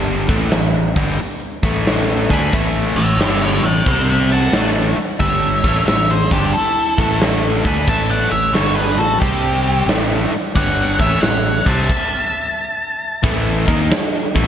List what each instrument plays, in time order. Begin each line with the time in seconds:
Already playing: fingered electric bass G1, overdriven electric guitar G2 D3 G3
0.28 fingered electric bass A1, overdriven electric guitar A2 E3 A3, kick, open hi-hat
0.51 fingered electric bass A1, overdriven electric guitar A2 E3, snare, open hi-hat
0.96 fingered electric bass G1, overdriven electric guitar G2 D3 G3, kick, open hi-hat
1.19 muted fingered electric bass stroke, muted overdriven electric guitar stroke, open hi-hat
1.63 fingered electric bass A1, overdriven electric guitar A2 E3 A3, kick, snare, open hi-hat
1.87 snare, open hi-hat
2.30 fingered electric bass D2, overdriven electric guitar D3 A3 D4, lead electric guitar G#5, kick, open hi-hat
2.34 lead electric guitar B5
2.53 fingered electric bass A1, overdriven electric guitar A2 E3 A3, kick, open hi-hat
2.96 fingered electric bass A1, overdriven electric guitar A2 E3, lead electric guitar C#5 E5, open hi-hat
3.17 fingered electric bass G1, overdriven electric guitar G2 D3 G3, lead electric guitar C#5 E5, snare, open hi-hat
3.42 lead electric guitar C#5 E5
3.62 fingered electric bass A1, overdriven electric guitar A2 E3, lead electric guitar D5 E5 G5, open hi-hat
3.86 fingered electric bass C2, overdriven electric guitar C3 G3 C4, lead electric guitar C5 E5 G5, kick, open hi-hat
4.09 lead electric guitar E5 G5
4.30 lead electric guitar F#5 A5, snare, open hi-hat
4.52 fingered electric bass A1, overdriven electric guitar A2 E3 A3, snare, open hi-hat
4.97 muted overdriven electric guitar stroke, muted fingered electric bass stroke, open hi-hat
5.20 fingered electric bass G1, overdriven electric guitar G2 D3 G3, lead electric guitar C#5 E5, kick, open hi-hat
5.64 fingered electric bass A1, overdriven electric guitar A2 E3 A3, kick, open hi-hat
5.87 fingered electric bass A1, overdriven electric guitar A2 E3, lead electric guitar C#5 E5, snare, open hi-hat
6.11 lead electric guitar G#4 C5
6.31 fingered electric bass G1, overdriven electric guitar G2 D3 G3, lead electric guitar D4 G4, kick, open hi-hat
6.53 lead electric guitar A4, muted fingered electric bass stroke, muted overdriven electric guitar stroke, open hi-hat
6.57 lead electric guitar E4
6.98 fingered electric bass A1, overdriven electric guitar A2 E3 A3, kick, open hi-hat
7.21 snare, open hi-hat
7.65 fingered electric bass D2, overdriven electric guitar D3 A3 D4, lead electric guitar G#5 B5, kick, open hi-hat
7.87 fingered electric bass A1, overdriven electric guitar A2 E3 A3, lead electric guitar E5 A5, kick, open hi-hat
8.10 lead electric guitar D5 F#5
8.31 fingered electric bass A1, overdriven electric guitar A2 E3, lead electric guitar C#5 E5, open hi-hat
8.54 fingered electric bass G1, overdriven electric guitar G2 D3 G3, lead electric guitar A4 C#5, snare, open hi-hat
8.75 lead electric guitar G#4 B4
8.97 fingered electric bass A1, overdriven electric guitar A2 E3, lead electric guitar F#4 A4, open hi-hat
9.20 fingered electric bass C2, overdriven electric guitar C3 G3 C4, lead electric guitar C4 G4, kick, open hi-hat
9.67 open hi-hat
9.86 fingered electric bass A1, overdriven electric guitar A2 E3 A3, snare, open hi-hat
10.31 muted fingered electric bass stroke, muted overdriven electric guitar stroke, open hi-hat
10.55 fingered electric bass G1, overdriven electric guitar G2 D3 G3, lead electric guitar C#5 F#5, kick, open hi-hat
10.99 fingered electric bass A1, overdriven electric guitar A2 E3 A3, lead electric guitar C#5 E5, kick, open hi-hat
11.22 fingered electric bass A1, overdriven electric guitar A2 E3, lead electric guitar C#5 F#5, snare, open hi-hat
11.66 fingered electric bass C2, overdriven electric guitar C3 G3 C4, lead electric guitar E5 A5, kick, open hi-hat
11.89 kick, crash
13.23 fingered electric bass A1, overdriven electric guitar A2 E3 A3, kick, open hi-hat
13.67 fingered electric bass D#2, overdriven electric guitar D#3 A#3 D#4, kick
13.91 muted overdriven electric guitar stroke, muted fingered electric bass stroke, snare, open hi-hat
14.14 snare
14.35 fingered electric bass A1, overdriven electric guitar A2 E3 A3, kick